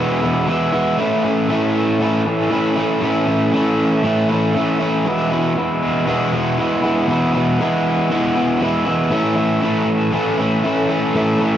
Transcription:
overdriven electric guitar
Already playing: E2 B2 E3 G#3
0.00 B3 E4
0.22 E3 G#3 B3 E4
0.47 E3 G#3 B3 E4
0.73 E3 G#3 B3 E4
0.98 A2 E3 A3 C#4 E4
1.24 A3 C#4 E4
1.49 E3 A3 C#4 E4
1.99 A2 E3 A3 C#4 E4
2.25 A3 C#4 E4
2.50 E3 A3 C#4 E4
2.76 A3 C#4 E4
3.01 A2 E3 A3 C#4 E4
3.27 A3 C#4 E4
3.53 E3 A3 C#4 E4
4.03 A2 E3 A3 C#4 E4
4.30 A3 C#4 E4
4.54 E3 A3 C#4 E4
4.80 A3 C#4 E4
5.05 E2 B2 E3 G#3 B3 E4
5.31 E3 G#3 B3 E4
5.56 E3 G#3 B3 E4
6.07 E2 B2 E3 G#3 B3 E4
6.32 E3 G#3 B3 E4
6.58 E3 G#3 B3 E4
6.82 E3 G#3 B3 E4
7.07 E2 B2 E3 G#3 B3 E4
7.33 E3 G#3 B3 E4
7.58 E3 G#3 B3 E4
8.09 E2 B2 E3 G#3 B3 E4
8.34 E3 G#3 B3 E4
8.60 E3 G#3 B3 E4
8.85 E3 G#3 B3 E4
9.10 A2 E3 A3 C#4 E4
9.36 A3 C#4 E4
9.61 E3 A3 C#4 E4
10.12 A2 E3 A3 C#4 E4
10.38 A3 C#4 E4
10.63 E3 A3 C#4 E4
10.89 A3 C#4 E4
11.15 A2 E3 A3 C#4 E4
11.40 A3 C#4 E4

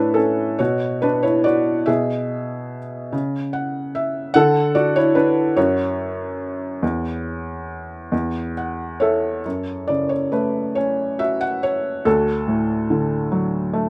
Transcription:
felt piano
Already playing: A2 D4 E4 A4 B4 C#5 E5
0.14 C#4 A4
0.59 B2 F#4 C#5
1.02 D4 B4
1.23 E4 C#5
1.44 F#4 D5
1.86 B2 G#4 E5
3.12 C#3
3.53 F#5
3.95 E5
4.34 D3 A4 F#5
4.75 F#4 D5
4.96 E4 C#5
5.15 D4 B4
5.56 F#2 F#4 C#5
6.82 E2
8.12 E2
8.57 F#5
9.00 A4 C#5 E5
9.45 F#2
9.88 C#3 D5
10.09 C#5
10.32 A3 B4
10.75 C#4 C#5
11.19 F#4 E5
11.41 F#5
11.63 C#5
12.05 D2 F#4 A4
12.47 A2
12.90 D3
13.32 F#3
13.73 A3

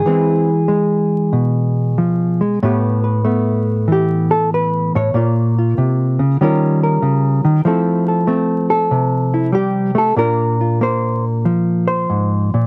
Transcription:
hollow-body jazz guitar
Already playing: G#4
0.06 E3 G#3 C4 E4
0.68 G#3
1.33 B2
1.98 F3
2.41 G#3
2.63 A2 A3 B3 G4 B4
3.04 B4
3.25 A3 B3
3.88 E3
3.92 G4
4.31 A4
4.54 B4
4.95 A2 C#5
5.14 A#2 A#3 F4
5.59 F4
5.78 C3
6.19 C#3
6.41 D#3 G3 C#4 F4 A#4
6.83 A#4
7.02 C#3
7.45 D#3
7.65 F3 A3 C4 E4 A4
8.08 A4
8.27 A3 C4
8.70 A4
8.91 C3
9.34 E4
9.52 G3 G4
9.95 A3 A4
10.16 A#2 A#3 D4 F4 A#4
10.61 F4
10.81 A#3 C5
11.45 F3
11.88 C5
12.10 G#2
12.54 A#2

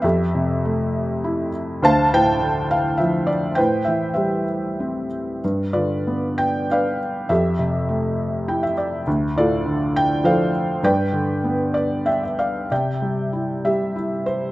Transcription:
felt piano
0.02 F2 G4 A4 E5
0.35 C3
0.65 A3
1.24 E4
1.82 D2 C5 F5 A5
2.13 A2 C5 G5
2.42 D3
2.71 F5
2.98 F3 E5
3.27 D5
3.55 A2 B4 C5 G5
3.85 E3 E5
4.14 G3 G4 C5 E5
4.80 C4
5.44 G2
5.73 D3 F4 B4 D5
6.07 B3
6.38 G5
6.70 D4 B4 D5 F5
7.29 F2 G4 A4 E5
7.59 C3
7.89 A3
8.48 E4 G5
8.63 E5
8.78 D5
9.07 D2
9.36 A2 F4 A4 D5
9.66 D3
9.96 G5
10.24 F3 A4 C5 F5
10.83 G2 B4 D5 G5
11.13 D3
11.44 B3
11.74 D5
12.06 D4 E5 G5
12.23 E5
12.39 D5 F5
12.71 C3 D5 E5 G5
13.02 G3
13.33 E4
13.65 G3 G4 E5
13.96 E4
14.26 C5

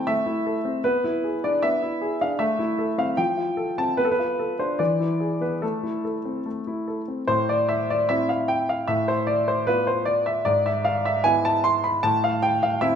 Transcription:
grand piano
Already playing: C4
0.07 A3 E5
0.26 E4
0.46 A4
0.65 C4
0.84 B3 B4
1.04 E4
1.24 G#4
1.44 D4 D5
1.62 B3 E5
1.82 E4
2.02 G#4
2.21 D4 F5
2.39 A3 E5
2.59 E4
2.79 A4
2.98 C4 F5
3.17 F3 G5
3.37 F4
3.57 A4
3.78 C4 A5
3.97 B3 B4
4.05 A4
4.11 B4
4.19 F4
4.39 A4
4.59 D4 C5
4.79 E3 D5
5.00 E4
5.20 G#4
5.41 B3 B4
5.62 A3 A4
5.83 E4
6.05 A4
6.25 C4
6.46 A3
6.67 E4
6.88 A4
7.08 C4
7.27 A2 C5
7.49 D5
7.69 E5
7.90 D5
8.09 C4 E4 E5
8.29 F5
8.48 G5
8.69 F5
8.88 A2 E5
9.08 C5
9.27 D5
9.48 C5
9.67 B3 F4 B4
9.87 C5
10.05 D5
10.26 E5
10.45 G#2 D5
10.66 E5
10.85 F5
11.05 E5
11.24 B3 E4 G#5
11.45 A5
11.64 C6
11.84 B5
12.03 A2 A5
12.24 F5
12.42 G5
12.63 F5
12.81 C4 E4 E5

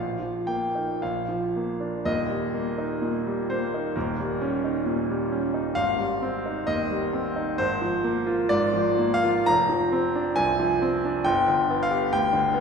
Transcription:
grand piano
Already playing: A#1 F4 F5
0.20 F3
0.47 A#3 G5
0.75 D#4
1.02 A#1 F5
1.29 F3
1.56 A#3
1.80 D4
2.05 D#1 D#2 D#5
2.30 G3
2.54 A#3
2.78 D#4
3.02 A#2
3.27 G3
3.50 A#3 C5
3.74 D#4
3.96 D#1 D#2 A#4
4.20 G3
4.42 C#4
4.64 D#4
4.86 A#2
5.10 G3
5.32 C#4
5.54 D#4
5.75 G#1 F5
5.99 G3
6.22 C4
6.46 D#4
6.67 D#2 D#5
6.91 G3
7.13 C4
7.36 D#4
7.58 G#1 C5
7.82 F3
8.04 A#3
8.27 F4
8.49 G#2 D5
8.74 F3
8.98 A#3
9.14 F5
9.24 F4
9.46 F1 A#5
9.69 F3
9.92 C4
10.15 D4
10.36 C2 G#5
10.60 F3
10.82 C4
11.05 D4
11.25 G1 G5
11.48 D3
11.70 B3
11.83 F5
11.91 G4
12.13 D2 G5
12.33 D3
12.54 B3

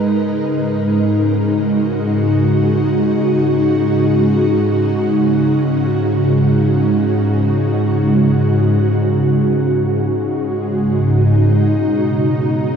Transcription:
ambient pad
Already playing: G#2 C#3 G#3 D#4 A#4 B4
0.79 F#4
9.64 G#3
10.11 D#4
11.48 B2
11.90 C#4
12.23 F#3

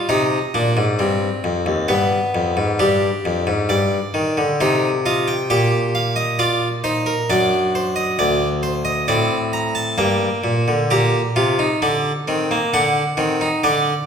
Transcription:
harpsichord
0.09 C3 D#4 D#5
0.54 A#2 D4
0.77 G#2
0.99 G2 C4
1.44 F2
1.66 D#2
1.88 G2 B3 B4
2.35 F2
2.57 G#2
2.79 G2 D4 G4
3.25 F2
3.47 G#2
3.69 G2 D5
4.14 D#3
4.37 D3
4.61 C3 D#4 C5
5.06 F4 D#5
5.28 G5
5.50 A#2 G4 G5
5.95 F5
6.16 D#5
6.39 F4 D5
6.84 D#4 C5
7.06 A#4
7.30 F#2 D4 D5
7.75 C5
7.96 D#5
8.19 D2 D5
8.63 C5
8.85 D#5
9.08 A2 C4 D5
9.53 A#5
9.75 A5
9.98 G2 A#3 G5
10.44 A#2
10.68 D3
10.91 A#2 G4 A#5
11.36 C3 F4
11.59 D#4
11.82 D3 D4
12.28 D#3 C4
12.51 A#3
12.74 D3 D4 F#5
13.17 D#3 C4
13.41 D#4
13.64 D3 D4 D5

